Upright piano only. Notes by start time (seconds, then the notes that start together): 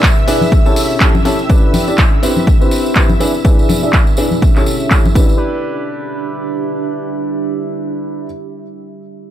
0.28 D4 E4 G#4 B4
0.66 C#4 E4 G4 A4
1.01 C#4 E4 G4 A4
1.25 C#4 E4 G4 A4
1.50 D4 E4 G4 B4
1.88 D4 E4 G4 D5
2.23 C4 E4 G4 B4
2.61 C4 E4 G4 B4
2.96 C4 E4 G4 B4
3.20 D4 E4 G#4 B4
3.45 D4 E4 G#4 B4
3.83 D4 E4 G#4 D5
4.18 D4 E4 G#4 B4
4.56 C#4 E4 G4 A4
4.91 C#4 G4 A4
5.15 D4 E4 G4 B4